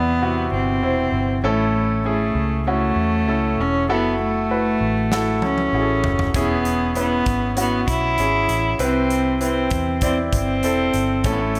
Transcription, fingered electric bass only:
0.00 0.48 E2 medium
0.52 0.82 G1 medium
0.82 1.11 E1 medium
1.12 1.41 G1 medium
1.43 2.31 A1 medium
2.35 2.93 C#2 medium
2.96 3.27 E2 medium
3.27 3.56 C#2 medium
3.58 3.88 E1 medium
3.88 4.76 F#1 medium
4.81 5.42 A1 medium
5.42 5.71 C#2 medium
5.73 6.01 A1 medium
6.03 6.32 F#1 medium
6.34 7.22 E1 medium
7.26 7.84 G#1 medium
7.88 8.16 B1 medium
8.18 8.47 G#1 medium
8.48 8.77 A1 medium
8.79 9.67 C2 medium
9.71 10.29 E2 medium
10.33 10.63 G1 medium
10.63 10.92 E1 medium
10.94 11.22 G1 medium
11.25 11.60 A1 medium

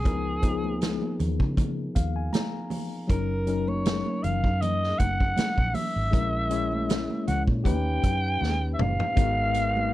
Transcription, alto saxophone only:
0.00 1.20 G#4 medium
3.10 3.70 A#4 medium
3.69 4.25 C#5 medium
4.23 4.63 F5 medium
4.61 5.00 D#5 loud
4.99 5.76 F#5 loud
5.74 7.27 E5 loud
7.28 7.44 F#5 medium
7.65 8.69 G5 loud
8.74 8.82 E5 medium
8.81 9.93 F5 loud

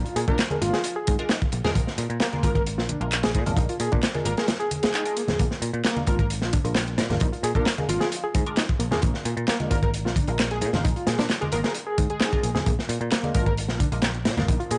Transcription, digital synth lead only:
0.28 0.42 A#4 medium
0.62 0.96 F4 medium
2.44 2.51 A#4 medium
2.55 2.62 A#4 medium
3.24 3.31 G#4 medium
3.35 3.42 G#4 medium
4.25 4.33 A#4 medium
4.38 4.45 A#4 medium
4.83 5.46 G#4 loud
6.08 6.15 A#4 medium
6.20 6.26 A#4 medium
7.56 7.69 A#4 medium
7.89 8.24 F4 medium
9.71 9.78 A#4 medium
9.83 9.90 A#4 medium
10.51 10.58 G#4 medium
10.62 10.69 G#4 medium
11.53 11.60 A#4 medium
11.65 11.72 A#4 medium
12.10 12.74 G#4 loud
13.35 13.42 A#4 medium
13.47 13.54 A#4 medium

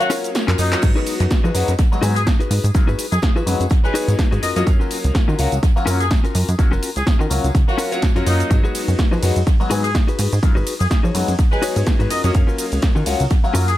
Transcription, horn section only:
0.00 0.11 F#4 loud
0.59 0.88 D#4 medium
2.16 2.26 G#4 loud
3.12 3.19 G#4 medium
3.22 3.31 G#4 medium
3.85 3.95 B4 medium
4.43 4.51 D#5 medium
4.56 4.63 D#5 medium
6.00 6.11 G#4 loud
6.96 7.03 G#4 medium
7.07 7.15 G#4 medium
7.69 7.79 F#4 medium
8.27 8.56 D#4 medium
9.84 9.94 G#4 medium
10.80 10.87 G#4 medium
10.91 10.99 G#4 medium
11.52 11.62 B4 medium
12.11 12.19 D#5 medium
12.25 12.31 D#5 medium
13.68 13.78 G#4 loud

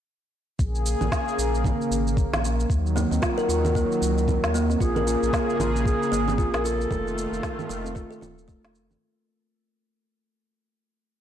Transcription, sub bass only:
0.60 0.96 A#1 medium
1.01 1.10 A#1 medium
1.38 1.74 A#1 medium
1.91 2.27 G#1 medium
2.33 2.66 A#1 medium
2.70 3.06 D#2 medium
3.11 3.20 D#2 medium
3.48 3.85 D#2 medium
4.01 4.38 C#2 medium
4.43 4.76 D#2 medium
4.80 5.17 A#1 medium
5.23 5.31 A#1 medium
5.59 5.96 A#1 medium
6.12 6.48 G#1 medium
6.53 6.87 A#1 medium
6.91 7.27 F1 medium
7.32 7.41 F1 medium
7.69 8.06 F1 medium
8.22 8.58 D#1 loud
8.63 8.97 F1 medium

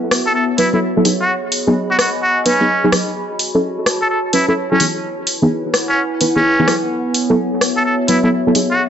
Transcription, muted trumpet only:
0.26 0.32 A4 medium
0.35 0.45 A4 medium
0.59 0.68 E4 medium
0.74 0.79 E4 medium
1.21 1.32 F#4 medium
1.91 1.96 F#4 medium
1.99 2.09 F#4 medium
2.22 2.39 F#4 medium
2.46 2.93 C#4 medium
4.02 4.07 A4 medium
4.10 4.20 A4 medium
4.33 4.43 E4 medium
4.48 4.54 E4 medium
4.72 4.84 C#4 medium
5.89 6.01 C#4 medium
6.36 6.74 C#4 loud
7.77 7.82 A4 medium
7.85 7.95 A4 medium
8.09 8.18 E4 medium
8.24 8.29 E4 medium
8.71 8.82 F#4 medium

